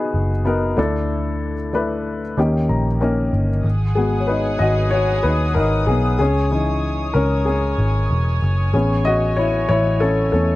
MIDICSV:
0, 0, Header, 1, 4, 480
1, 0, Start_track
1, 0, Tempo, 636943
1, 826, Time_signature, 4, 2, 24, 8
1, 7956, End_track
2, 0, Start_track
2, 0, Title_t, "String section"
2, 0, Program_c, 0, 48
2, 2743, Note_on_c, 0, 68, 73
2, 2743, Note_on_c, 0, 78, 57
2, 2743, Note_on_c, 0, 80, 57
2, 2743, Note_on_c, 0, 87, 77
2, 4645, Note_off_c, 0, 68, 0
2, 4645, Note_off_c, 0, 78, 0
2, 4645, Note_off_c, 0, 80, 0
2, 4669, Note_on_c, 0, 80, 64
2, 4670, Note_on_c, 0, 73, 64
2, 6554, Note_off_c, 0, 87, 0
2, 7956, Note_off_c, 0, 73, 0
2, 7956, Note_off_c, 0, 80, 0
2, 7956, End_track
3, 0, Start_track
3, 0, Title_t, "Upright piano"
3, 0, Program_c, 1, 0
3, 0, Control_c, 1, 64, 127
3, 0, Note_on_c, 1, 47, 72
3, 0, Note_on_c, 1, 59, 70
3, 0, Note_on_c, 1, 63, 66
3, 0, Note_on_c, 1, 66, 65
3, 0, Note_on_c, 1, 68, 80
3, 0, Note_on_c, 1, 71, 72
3, 223, Note_off_c, 1, 59, 0
3, 225, Note_off_c, 1, 63, 0
3, 228, Note_off_c, 1, 66, 0
3, 230, Note_off_c, 1, 68, 0
3, 338, Note_on_c, 1, 59, 72
3, 343, Note_on_c, 1, 63, 67
3, 347, Note_on_c, 1, 66, 62
3, 352, Note_on_c, 1, 70, 82
3, 578, Note_on_c, 1, 57, 80
3, 582, Note_off_c, 1, 59, 0
3, 584, Note_off_c, 1, 63, 0
3, 585, Note_on_c, 1, 62, 70
3, 586, Note_on_c, 1, 50, 69
3, 587, Note_off_c, 1, 66, 0
3, 588, Note_on_c, 1, 64, 71
3, 589, Note_off_c, 1, 70, 0
3, 594, Note_on_c, 1, 69, 90
3, 596, Control_c, 1, 64, 0
3, 598, Note_off_c, 1, 47, 0
3, 602, Note_off_c, 1, 71, 0
3, 708, Control_c, 1, 64, 127
3, 1158, Note_off_c, 1, 57, 0
3, 1162, Note_off_c, 1, 62, 0
3, 1163, Note_off_c, 1, 64, 0
3, 1166, Note_off_c, 1, 69, 0
3, 1276, Note_off_c, 1, 50, 0
3, 1303, Note_on_c, 1, 57, 67
3, 1309, Note_on_c, 1, 62, 61
3, 1313, Note_on_c, 1, 64, 62
3, 1317, Note_on_c, 1, 71, 78
3, 1666, Note_off_c, 1, 57, 0
3, 1669, Note_off_c, 1, 62, 0
3, 1671, Note_off_c, 1, 64, 0
3, 1673, Note_off_c, 1, 71, 0
3, 1787, Note_on_c, 1, 58, 67
3, 1792, Note_on_c, 1, 61, 61
3, 1793, Note_on_c, 1, 51, 59
3, 1795, Note_on_c, 1, 63, 65
3, 1796, Control_c, 1, 64, 0
3, 1801, Note_on_c, 1, 67, 76
3, 1920, Control_c, 1, 64, 127
3, 2028, Note_on_c, 1, 82, 54
3, 2148, Note_off_c, 1, 58, 0
3, 2150, Note_off_c, 1, 61, 0
3, 2152, Note_off_c, 1, 63, 0
3, 2155, Note_off_c, 1, 67, 0
3, 2250, Note_off_c, 1, 82, 0
3, 2266, Note_on_c, 1, 58, 69
3, 2268, Note_on_c, 1, 61, 64
3, 2273, Note_on_c, 1, 75, 60
3, 2274, Note_on_c, 1, 63, 64
3, 2278, Note_on_c, 1, 70, 76
3, 2480, Note_off_c, 1, 51, 0
3, 2627, Note_off_c, 1, 58, 0
3, 2628, Note_off_c, 1, 61, 0
3, 2631, Note_off_c, 1, 63, 0
3, 2633, Note_off_c, 1, 70, 0
3, 2720, Note_off_c, 1, 75, 0
3, 2758, Control_c, 1, 64, 0
3, 2889, Control_c, 1, 64, 127
3, 2979, Note_on_c, 1, 68, 74
3, 2986, Note_on_c, 1, 56, 48
3, 2991, Note_on_c, 1, 59, 53
3, 2994, Note_on_c, 1, 66, 54
3, 3166, Note_off_c, 1, 59, 0
3, 3166, Note_on_c, 1, 73, 56
3, 3176, Note_off_c, 1, 68, 0
3, 3219, Note_on_c, 1, 71, 71
3, 3223, Note_off_c, 1, 73, 0
3, 3236, Note_on_c, 1, 63, 60
3, 3455, Note_off_c, 1, 63, 0
3, 3459, Note_on_c, 1, 75, 89
3, 3466, Note_off_c, 1, 66, 0
3, 3470, Note_off_c, 1, 71, 0
3, 3477, Note_on_c, 1, 66, 70
3, 3514, Note_off_c, 1, 75, 0
3, 3530, Note_off_c, 1, 66, 0
3, 3697, Note_on_c, 1, 73, 88
3, 3714, Note_on_c, 1, 66, 65
3, 3934, Note_off_c, 1, 66, 0
3, 3940, Note_on_c, 1, 71, 78
3, 3949, Note_off_c, 1, 73, 0
3, 3958, Note_on_c, 1, 63, 60
3, 4176, Note_off_c, 1, 63, 0
3, 4178, Note_on_c, 1, 70, 75
3, 4191, Note_off_c, 1, 71, 0
3, 4196, Note_on_c, 1, 63, 65
3, 4405, Note_off_c, 1, 70, 0
3, 4415, Note_off_c, 1, 63, 0
3, 4423, Note_on_c, 1, 68, 75
3, 4438, Note_on_c, 1, 59, 57
3, 4636, Note_off_c, 1, 56, 0
3, 4651, Note_off_c, 1, 68, 0
3, 4656, Note_off_c, 1, 59, 0
3, 4662, Note_on_c, 1, 68, 85
3, 4678, Control_c, 1, 64, 0
3, 4679, Note_on_c, 1, 61, 69
3, 4789, Control_c, 1, 64, 127
3, 4895, Note_off_c, 1, 61, 0
3, 4902, Note_on_c, 1, 52, 48
3, 4906, Note_on_c, 1, 61, 46
3, 4910, Note_on_c, 1, 63, 58
3, 5354, Note_off_c, 1, 68, 0
3, 5377, Note_on_c, 1, 70, 81
3, 5381, Note_off_c, 1, 61, 0
3, 5393, Note_on_c, 1, 61, 68
3, 5604, Note_off_c, 1, 70, 0
3, 5613, Note_off_c, 1, 61, 0
3, 5617, Note_on_c, 1, 68, 72
3, 5633, Note_on_c, 1, 61, 54
3, 6311, Note_off_c, 1, 68, 0
3, 6319, Note_off_c, 1, 61, 0
3, 6553, Note_off_c, 1, 52, 0
3, 6558, Note_off_c, 1, 63, 0
3, 6582, Note_on_c, 1, 68, 57
3, 6586, Note_on_c, 1, 59, 51
3, 6589, Note_on_c, 1, 61, 63
3, 6596, Control_c, 1, 64, 0
3, 6706, Control_c, 1, 64, 127
3, 6819, Note_on_c, 1, 75, 91
3, 6833, Note_on_c, 1, 66, 71
3, 7053, Note_off_c, 1, 66, 0
3, 7057, Note_on_c, 1, 73, 81
3, 7070, Note_off_c, 1, 75, 0
3, 7070, Note_on_c, 1, 64, 68
3, 7288, Note_off_c, 1, 73, 0
3, 7291, Note_off_c, 1, 64, 0
3, 7300, Note_on_c, 1, 73, 93
3, 7312, Note_on_c, 1, 64, 75
3, 7532, Note_off_c, 1, 64, 0
3, 7538, Note_off_c, 1, 61, 0
3, 7539, Note_on_c, 1, 69, 91
3, 7549, Note_on_c, 1, 61, 64
3, 7550, Note_off_c, 1, 73, 0
3, 7767, Note_off_c, 1, 69, 0
3, 7771, Note_off_c, 1, 61, 0
3, 7774, Note_off_c, 1, 59, 0
3, 7778, Note_on_c, 1, 69, 76
3, 7781, Note_on_c, 1, 57, 39
3, 7785, Note_on_c, 1, 59, 39
3, 7790, Note_on_c, 1, 61, 53
3, 7956, Note_off_c, 1, 57, 0
3, 7956, Note_off_c, 1, 59, 0
3, 7956, Note_off_c, 1, 61, 0
3, 7956, Note_off_c, 1, 68, 0
3, 7956, Note_off_c, 1, 69, 0
3, 7956, End_track
4, 0, Start_track
4, 0, Title_t, "Picked electric bass"
4, 0, Program_c, 2, 34
4, 106, Note_on_c, 2, 30, 70
4, 556, Note_off_c, 2, 30, 0
4, 588, Note_on_c, 2, 38, 87
4, 1787, Note_off_c, 2, 38, 0
4, 1792, Note_on_c, 2, 39, 74
4, 2013, Note_off_c, 2, 39, 0
4, 2031, Note_on_c, 2, 34, 74
4, 2479, Note_off_c, 2, 34, 0
4, 2510, Note_on_c, 2, 31, 79
4, 2732, Note_off_c, 2, 31, 0
4, 2747, Note_on_c, 2, 32, 92
4, 3437, Note_off_c, 2, 32, 0
4, 3469, Note_on_c, 2, 32, 86
4, 3918, Note_off_c, 2, 32, 0
4, 3951, Note_on_c, 2, 39, 76
4, 4187, Note_on_c, 2, 32, 75
4, 4199, Note_off_c, 2, 39, 0
4, 4410, Note_off_c, 2, 32, 0
4, 4426, Note_on_c, 2, 35, 89
4, 4649, Note_off_c, 2, 35, 0
4, 4670, Note_on_c, 2, 37, 82
4, 5357, Note_off_c, 2, 37, 0
4, 5388, Note_on_c, 2, 37, 80
4, 5837, Note_off_c, 2, 37, 0
4, 5865, Note_on_c, 2, 32, 71
4, 6089, Note_off_c, 2, 32, 0
4, 6109, Note_on_c, 2, 28, 76
4, 6331, Note_off_c, 2, 28, 0
4, 6348, Note_on_c, 2, 30, 81
4, 6570, Note_off_c, 2, 30, 0
4, 6585, Note_on_c, 2, 33, 96
4, 7275, Note_off_c, 2, 33, 0
4, 7306, Note_on_c, 2, 33, 91
4, 7756, Note_off_c, 2, 33, 0
4, 7787, Note_on_c, 2, 40, 84
4, 7956, Note_off_c, 2, 40, 0
4, 7956, End_track
0, 0, End_of_file